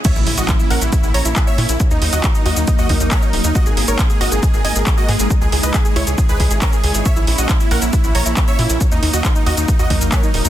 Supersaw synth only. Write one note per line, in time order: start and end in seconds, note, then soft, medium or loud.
0.05 0.14 C#5 medium
0.05 0.14 E5 loud
0.16 0.25 E4 medium
0.27 0.36 E4 medium
0.38 0.47 F#4 medium
0.38 0.47 D#5 medium
0.49 0.58 E4 medium
0.59 0.69 E4 medium
0.70 0.80 A#4 medium
0.70 0.80 F#5 loud
0.81 0.91 E4 medium
0.92 1.02 E4 medium
1.03 1.13 E4 medium
1.14 1.24 C#5 medium
1.14 1.24 A#5 loud
1.25 1.35 E4 medium
1.36 1.46 E4 medium
1.47 1.57 C#5 medium
1.47 1.57 E5 loud
1.58 1.68 E4 medium
1.69 1.79 E4 medium
1.91 2.00 D#4 medium
2.02 2.11 D#4 medium
2.13 2.22 F#4 medium
2.13 2.22 D#5 medium
2.24 2.33 D#4 medium
2.35 2.44 D#4 medium
2.46 2.55 F#4 medium
2.46 2.55 D#5 medium
2.57 2.66 D#4 medium
2.68 2.77 D#4 medium
2.79 2.88 F#4 medium
2.79 2.88 D#5 medium
2.90 2.99 D#4 medium
3.01 3.10 D#4 medium
3.12 3.21 A#4 medium
3.12 3.21 C#5 loud
3.23 3.32 D#4 medium
3.33 3.43 D#4 medium
3.44 3.54 D#4 medium
3.55 3.65 F#4 medium
3.55 3.65 D#5 loud
3.66 3.76 G#4 medium
3.77 3.87 G#4 medium
3.88 3.97 A#4 medium
3.88 3.97 C#5 medium
4.10 4.19 G#4 medium
4.21 4.30 F#4 medium
4.21 4.30 D#5 loud
4.32 4.41 G#4 medium
4.43 4.52 G#4 medium
4.54 4.63 G#4 medium
4.65 4.74 D#5 medium
4.65 4.74 G#5 medium
4.76 4.85 G#4 medium
4.86 4.96 G#4 medium
4.98 5.07 F#4 medium
4.98 5.07 D#5 loud
5.09 5.18 G#4 medium
5.20 5.29 G#4 medium
5.42 5.51 G#4 medium
5.53 5.62 G#4 medium
5.63 5.73 B4 medium
5.63 5.73 D#5 loud
5.74 5.84 G#4 medium
5.85 5.95 G#4 medium
5.96 6.05 E4 medium
5.96 6.05 C#5 loud
6.07 6.16 G#4 medium
6.18 6.27 G#4 medium
6.29 6.38 G#4 medium
6.29 6.38 B4 loud
6.40 6.49 G#4 medium
6.51 6.60 G#4 medium
6.62 6.71 C#4 medium
6.62 6.71 A#4 loud
6.73 6.82 G#4 medium
6.84 6.93 G#4 medium
6.95 7.04 G#4 medium
7.06 7.15 C#5 medium
7.06 7.15 E5 loud
7.16 7.26 E4 medium
7.27 7.37 E4 medium
7.38 7.48 F#4 medium
7.38 7.48 D#5 medium
7.49 7.59 E4 medium
7.60 7.70 E4 medium
7.71 7.81 A#4 medium
7.71 7.81 F#5 loud
7.82 7.92 E4 medium
7.93 8.03 E4 medium
8.04 8.14 E4 medium
8.15 8.24 C#5 medium
8.15 8.24 A#5 medium
8.26 8.35 E4 medium
8.37 8.46 E4 medium
8.48 8.57 C#5 medium
8.48 8.57 E5 loud
8.59 8.68 E4 medium
8.70 8.79 E4 medium
8.92 9.01 D#4 medium
9.03 9.12 D#4 medium
9.13 9.23 F#4 medium
9.13 9.23 D#5 loud
9.24 9.34 D#4 medium
9.36 9.45 D#4 medium
9.46 9.56 F#4 medium
9.46 9.56 D#5 loud
9.58 9.67 D#4 medium
9.68 9.78 D#4 medium
9.79 9.89 F#4 medium
9.79 9.89 D#5 medium
9.90 10.00 D#4 medium
10.01 10.11 D#4 medium
10.12 10.22 A#4 medium
10.12 10.22 C#5 medium
10.23 10.33 D#4 medium
10.34 10.44 D#4 medium
10.45 10.49 D#4 medium